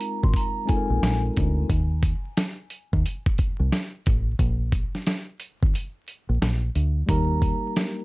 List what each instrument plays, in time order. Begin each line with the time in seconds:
Already playing: tine electric piano G#3 C4 D#4 F4 A#4, vibraphone A#5
0.01 closed hi-hat
0.23 fingered electric bass G#1, vibraphone C6, kick
0.34 vibraphone A#5, kick, closed hi-hat
0.65 tine electric piano G#3 C4 D#4 F4, vibraphone G#5, kick, closed hi-hat
0.70 tine electric piano A4
0.76 tine electric piano A#4
0.90 fingered electric bass A#1
1.03 fingered electric bass A#1, snare, closed hi-hat
1.36 fingered electric bass D2, kick, closed hi-hat
1.70 fingered electric bass D#2, kick, closed hi-hat
2.03 kick, closed hi-hat
2.37 snare, closed hi-hat
2.70 closed hi-hat
2.93 fingered electric bass D#2, kick
3.06 closed hi-hat
3.26 kick
3.38 kick, closed hi-hat
3.60 fingered electric bass C2
3.72 snare, closed hi-hat
4.06 fingered electric bass A1, kick, closed hi-hat
4.39 fingered electric bass A#1, kick, closed hi-hat
4.72 kick, closed hi-hat
4.95 snare
5.07 snare, closed hi-hat
5.40 closed hi-hat
5.63 fingered electric bass G#1, kick
5.75 closed hi-hat
6.08 closed hi-hat
6.29 fingered electric bass A#1
6.42 fingered electric bass A#1, snare, closed hi-hat
6.75 fingered electric bass D2, closed hi-hat
7.06 fingered electric bass D#2, tine electric piano G3 A#3 D#4 G4, vibraphone A#5, kick, closed hi-hat
7.10 tine electric piano A#4
7.42 kick, closed hi-hat
7.76 snare, closed hi-hat